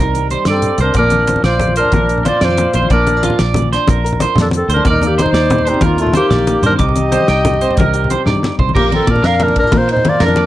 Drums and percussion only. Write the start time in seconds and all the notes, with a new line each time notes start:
0.07 low conga
0.14 closed hi-hat, high conga
0.30 closed hi-hat, high conga
0.45 snare, closed hi-hat, high conga
0.62 closed hi-hat, low conga
0.78 closed hi-hat, low conga
0.94 kick, closed hi-hat, muted conga, low conga
1.04 low conga
1.10 closed hi-hat, high conga
1.20 low conga
1.27 closed hi-hat, muted conga, low conga
1.36 high conga, low conga
1.44 snare, closed hi-hat, low conga
1.60 closed hi-hat, muted conga, low conga
1.67 high conga
1.76 closed hi-hat
1.85 low conga
1.92 kick, closed hi-hat, muted conga, high conga
2.09 closed hi-hat, low conga
2.18 low conga
2.25 closed hi-hat, muted conga, high conga
2.33 low conga
2.41 snare, closed hi-hat, low conga
2.49 high conga, low conga
2.57 closed hi-hat, muted conga
2.73 closed hi-hat, low conga
2.82 high conga, low conga
2.90 kick, closed hi-hat, muted conga, low conga
3.07 closed hi-hat, high conga
3.14 low conga
3.23 closed hi-hat, muted conga, low conga
3.30 high conga, low conga
3.38 snare, closed hi-hat, low conga
3.54 closed hi-hat, muted conga, low conga
3.62 high conga
3.73 snare, closed hi-hat
3.88 kick, closed hi-hat, muted conga, high conga
4.05 closed hi-hat, low conga
4.13 low conga
4.20 closed hi-hat, muted conga, high conga
4.29 low conga
4.36 snare, closed hi-hat, low conga
4.43 high conga, low conga
4.51 closed hi-hat, muted conga
4.70 closed hi-hat
4.76 high conga, low conga
4.85 kick, closed hi-hat, muted conga, low conga
4.93 low conga
5.02 closed hi-hat, high conga
5.10 low conga
5.19 closed hi-hat, muted conga, low conga
5.26 high conga, low conga
5.34 snare, closed hi-hat, low conga
5.50 closed hi-hat, muted conga, low conga
5.58 high conga
5.67 closed hi-hat
5.74 low conga
5.81 kick, closed hi-hat, muted conga, high conga
5.97 closed hi-hat, low conga
6.07 low conga
6.14 closed hi-hat, muted conga, high conga
6.23 low conga
6.31 snare, closed hi-hat, low conga
6.39 high conga, low conga
6.47 closed hi-hat, muted conga
6.63 closed hi-hat, low conga
6.71 high conga, low conga
6.79 kick, closed hi-hat, muted conga
6.89 low conga
6.96 closed hi-hat, high conga
7.12 closed hi-hat, muted conga, low conga
7.20 high conga
7.28 snare, closed hi-hat
7.45 closed hi-hat, muted conga, low conga
7.54 high conga, low conga
7.61 closed hi-hat
7.71 low conga
7.77 kick, closed hi-hat, muted conga, high conga
7.94 closed hi-hat
8.04 low conga
8.10 closed hi-hat, muted conga
8.20 low conga
8.26 snare, low conga
8.36 high conga, low conga
8.43 snare, muted conga
8.59 kick, low conga
8.69 high conga, low conga
8.75 kick, crash, muted conga
8.85 low conga
8.92 ride, high conga
9.07 kick, ride, muted conga
9.16 high conga, low conga
9.24 snare, ride
9.40 ride, muted conga
9.48 high conga, low conga
9.56 kick, ride
9.64 low conga
9.72 kick, ride, muted conga, high conga
9.89 ride
9.97 low conga
10.05 ride, muted conga, high conga
10.20 snare, ride, low conga
10.28 high conga, low conga
10.36 ride, muted conga